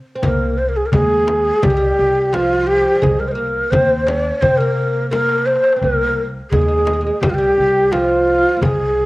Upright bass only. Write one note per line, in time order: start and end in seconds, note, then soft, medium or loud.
0.23 0.79 C2 medium
0.93 1.49 D#2 loud
1.63 1.91 C2 medium
1.99 2.83 C2 medium
3.03 3.59 C2 medium
3.73 4.29 D#2 loud
4.43 5.56 C3 medium
5.83 6.39 C2 medium
6.52 7.09 D#2 medium
7.22 7.51 C2 medium
7.58 8.43 C2 medium
8.63 9.06 C2 medium